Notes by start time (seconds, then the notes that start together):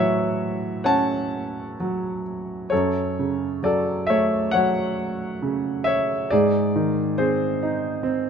Already playing: A2 E3 F#3 C#5 E5 F#5
0.84 C#4 C#5 F#5 A5
1.80 F#3
2.70 F#2 A4 C#5
3.19 C#3
3.63 F#3 A4 D5
4.07 A3 C#5 E5
4.51 F#3 C#5 F#5
5.42 C#3
5.84 C#5 E5
6.30 G#2 G#4 D5
6.76 D#3
7.18 C4 G#4 C5
7.63 D#4
8.03 C4